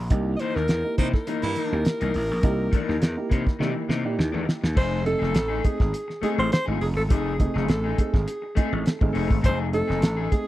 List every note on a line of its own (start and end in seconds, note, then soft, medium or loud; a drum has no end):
0.10 0.35 C2 loud
0.10 0.33 A#3 loud
0.10 0.33 D#4 loud
0.10 0.33 E4 loud
0.10 0.33 G4 loud
0.10 kick loud
0.10 closed hi-hat loud
0.36 0.47 E4 soft
0.36 0.57 C5 loud
0.36 0.41 D#5 medium
0.36 closed hi-hat medium
0.41 0.62 E3 medium
0.41 0.63 A#3 loud
0.41 0.63 D#4 loud
0.41 0.48 G4 soft
0.55 0.67 D#2 medium
0.55 0.97 A#4 loud
0.55 snare soft
0.68 0.82 E2 medium
0.68 muted clean electric guitar stroke soft
0.68 snare loud
0.68 closed hi-hat medium
0.84 1.17 A#3 medium
0.84 1.17 D#4 medium
0.84 1.17 E4 medium
0.84 1.17 G4 medium
0.98 1.11 C3 medium
0.98 1.16 E3 medium
0.98 1.14 A#3 medium
0.98 1.08 D#4 loud
0.98 1.12 D#4 medium
0.98 1.12 C5 medium
0.98 kick medium
0.98 closed hi-hat medium
1.13 4.15 A#4 loud
1.13 muted clean electric guitar stroke medium
1.13 kick medium
1.13 snare soft
1.27 1.49 E3 medium
1.27 1.60 A#3 medium
1.27 1.43 A#3 medium
1.27 1.60 D#4 medium
1.27 1.42 D#4 medium
1.27 1.60 E4 medium
1.27 1.61 A#4 medium
1.27 closed hi-hat loud
1.42 1.54 G2 medium
1.42 1.79 E4 loud
1.42 muted clean electric guitar stroke soft
1.42 snare soft
1.42 closed hi-hat medium
1.56 1.74 E3 medium
1.56 1.73 A#3 medium
1.56 1.71 D#4 medium
1.56 closed hi-hat medium
1.71 1.84 D#2 medium
1.71 2.26 A#3 medium
1.71 2.26 D#4 medium
1.71 2.26 E4 medium
1.71 2.27 G4 medium
1.71 muted clean electric guitar stroke soft
1.85 muted clean electric guitar stroke soft
1.85 snare loud
1.85 closed hi-hat medium
2.01 2.13 C2 medium
2.01 2.13 E3 medium
2.01 2.14 A#3 medium
2.01 2.15 D#4 medium
2.01 closed hi-hat medium
2.14 2.31 A1 medium
2.14 muted clean electric guitar stroke soft
2.14 open hi-hat medium
2.30 2.42 A#1 medium
2.30 muted clean electric guitar stroke soft
2.43 2.68 C2 loud
2.43 2.66 A#3 loud
2.43 2.66 D#4 loud
2.43 2.66 E4 loud
2.43 2.66 G4 loud
2.43 kick loud
2.43 closed hi-hat loud
2.72 2.94 E3 medium
2.72 2.95 A#3 loud
2.72 2.96 D#4 loud
2.72 kick loud
2.72 closed hi-hat medium
2.89 3.00 D#2 medium
2.89 snare soft
3.01 3.15 E2 medium
3.01 muted clean electric guitar stroke soft
3.01 snare loud
3.01 closed hi-hat medium
3.17 3.50 A#3 medium
3.17 3.50 D#4 medium
3.17 3.50 E4 medium
3.17 3.50 G4 medium
3.30 3.44 C3 loud
3.30 3.48 E3 medium
3.30 3.46 A#3 medium
3.30 3.45 D#4 medium
3.30 kick medium
3.30 closed hi-hat medium
3.46 muted clean electric guitar stroke soft
3.46 kick medium
3.46 snare soft
3.59 3.73 C3 medium
3.59 3.82 E3 medium
3.59 3.93 A#3 medium
3.59 3.75 A#3 medium
3.59 3.93 D#4 medium
3.59 3.74 D#4 loud
3.59 3.93 E4 medium
3.59 3.93 G4 loud
3.59 snare medium
3.75 muted clean electric guitar stroke soft
3.89 4.05 C3 medium
3.89 4.07 E3 medium
3.89 4.04 A#3 medium
3.89 4.03 D#4 medium
3.89 snare medium
4.04 4.16 A#2 medium
4.04 4.59 A#3 medium
4.04 4.59 D#4 medium
4.04 4.59 E4 medium
4.04 4.60 G4 loud
4.04 muted clean electric guitar stroke medium
4.17 4.31 D#2 medium
4.17 muted clean electric guitar stroke soft
4.17 snare medium
4.32 4.45 E2 loud
4.32 4.45 E3 medium
4.32 4.46 A#3 medium
4.32 4.46 D#4 medium
4.46 muted clean electric guitar stroke soft
4.46 snare medium
4.61 4.75 D#2 loud
4.61 muted clean electric guitar stroke soft
4.61 snare medium
4.75 5.14 F1 loud
4.75 4.98 A3 medium
4.75 4.99 D#4 loud
4.75 4.99 G#4 loud
4.75 5.04 C5 loud
4.75 kick loud
4.75 crash loud
5.04 5.50 A3 loud
5.04 5.51 C4 medium
5.04 5.51 D#4 medium
5.04 5.67 A4 loud
5.04 5.51 A4 loud
5.04 muted clean electric guitar stroke medium
5.04 closed hi-hat medium
5.19 5.35 F1 medium
5.19 5.32 A3 medium
5.19 5.33 D#4 medium
5.19 5.34 G#4 medium
5.23 snare soft
5.34 5.59 A1 medium
5.34 muted clean electric guitar stroke soft
5.34 snare loud
5.34 closed hi-hat loud
5.48 5.62 A3 medium
5.48 5.63 D#4 medium
5.48 5.64 G#4 medium
5.64 5.87 A3 medium
5.64 5.87 C4 medium
5.64 5.87 D#4 medium
5.64 6.23 G#4 medium
5.64 5.87 G#4 medium
5.64 muted clean electric guitar stroke soft
5.64 kick medium
5.64 closed hi-hat medium
5.78 5.92 G#1 medium
5.78 muted clean electric guitar stroke soft
5.78 kick medium
5.78 snare soft
5.92 6.01 D#4 soft
5.92 muted clean electric guitar stroke soft
5.92 closed hi-hat loud
6.08 muted clean electric guitar stroke soft
6.08 snare soft
6.22 6.44 A3 medium
6.22 6.56 A3 loud
6.22 6.56 C4 medium
6.22 6.37 D#4 medium
6.22 6.56 D#4 medium
6.22 6.36 G#4 loud
6.22 6.30 G#4 medium
6.22 6.56 G#4 loud
6.22 muted slap bass stroke soft
6.22 closed hi-hat medium
6.37 6.50 A1 medium
6.37 6.52 C5 loud
6.37 muted clean electric guitar stroke medium
6.50 6.66 C5 loud
6.50 muted clean electric guitar stroke soft
6.50 snare loud
6.50 closed hi-hat medium
6.66 6.79 G#1 medium
6.66 7.22 A3 medium
6.66 6.78 A3 medium
6.66 7.22 C4 medium
6.66 6.79 D#4 medium
6.66 7.22 D#4 medium
6.66 7.23 F4 medium
6.66 6.80 G#4 medium
6.79 6.94 F1 loud
6.79 6.88 G#4 medium
6.79 muted clean electric guitar stroke soft
6.79 open hi-hat medium
6.95 7.08 G#1 medium
6.95 7.03 A4 medium
6.95 muted clean electric guitar stroke soft
7.09 7.48 F1 loud
7.09 7.32 A3 medium
7.09 7.32 D#4 medium
7.09 7.65 G#4 medium
7.09 7.33 G#4 loud
7.09 kick loud
7.09 closed hi-hat loud
7.39 7.84 A3 loud
7.39 7.84 C4 medium
7.39 7.85 D#4 loud
7.39 7.85 G#4 loud
7.39 muted clean electric guitar stroke soft
7.39 kick medium
7.39 closed hi-hat medium
7.54 7.69 F1 medium
7.54 7.67 A3 medium
7.54 7.68 D#4 medium
7.54 7.69 G#4 medium
7.54 snare soft
7.68 7.93 A1 medium
7.68 8.15 A4 medium
7.68 muted clean electric guitar stroke soft
7.68 snare loud
7.68 closed hi-hat medium
7.84 7.97 A3 medium
7.84 7.98 D#4 medium
7.84 7.98 G#4 medium
7.98 8.20 A3 medium
7.98 8.21 C4 medium
7.98 8.21 D#4 medium
7.98 8.21 G#4 loud
7.98 muted clean electric guitar stroke soft
7.98 kick medium
7.98 closed hi-hat medium
8.13 8.25 G#1 medium
8.13 8.72 G#4 medium
8.13 muted clean electric guitar stroke soft
8.13 kick loud
8.13 snare soft
8.27 8.35 D#4 soft
8.27 8.36 G#4 soft
8.27 muted clean electric guitar stroke soft
8.27 closed hi-hat medium
8.42 muted clean electric guitar stroke soft
8.55 8.78 A3 medium
8.55 8.89 A3 medium
8.55 8.90 C4 medium
8.55 8.70 D#4 medium
8.55 8.90 D#4 medium
8.55 8.70 G#4 loud
8.55 8.90 G#4 loud
8.55 muted slap bass stroke soft
8.55 kick medium
8.55 closed hi-hat medium
8.71 8.84 A1 medium
8.71 muted clean electric guitar stroke soft
8.84 9.13 A4 medium
8.84 muted clean electric guitar stroke soft
8.84 snare loud
8.84 closed hi-hat medium
8.99 9.13 G#1 loud
8.99 9.55 A3 loud
8.99 9.56 C4 medium
8.99 9.56 D#4 medium
8.99 9.56 G#4 loud
8.99 muted clean electric guitar stroke medium
8.99 kick loud
9.13 9.28 F1 loud
9.13 9.36 A3 medium
9.13 9.29 D#4 medium
9.13 9.27 G#4 medium
9.13 9.42 C5 medium
9.13 open hi-hat medium
9.28 9.42 G#1 medium
9.28 muted clean electric guitar stroke medium
9.28 kick medium
9.42 9.81 F1 loud
9.42 9.65 A3 medium
9.42 9.66 D#4 loud
9.42 9.66 G#4 loud
9.42 9.58 C5 loud
9.42 kick loud
9.42 closed hi-hat loud
9.73 10.18 A3 loud
9.73 10.18 C4 loud
9.73 10.18 D#4 medium
9.73 10.34 A4 loud
9.73 10.18 A4 loud
9.73 muted clean electric guitar stroke soft
9.73 closed hi-hat medium
9.88 10.03 F1 medium
9.88 10.00 A3 soft
9.88 10.01 D#4 medium
9.88 10.02 G#4 medium
9.88 snare soft
10.02 10.27 A1 medium
10.02 muted clean electric guitar stroke soft
10.02 snare loud
10.02 closed hi-hat medium
10.17 10.30 A3 medium
10.17 10.31 D#4 medium
10.17 10.31 G#4 medium
10.31 10.47 A3 medium
10.31 10.47 C4 medium
10.31 10.47 D#4 medium
10.31 10.47 G#4 loud
10.31 10.47 G#4 medium
10.31 muted clean electric guitar stroke soft
10.31 kick medium
10.31 closed hi-hat medium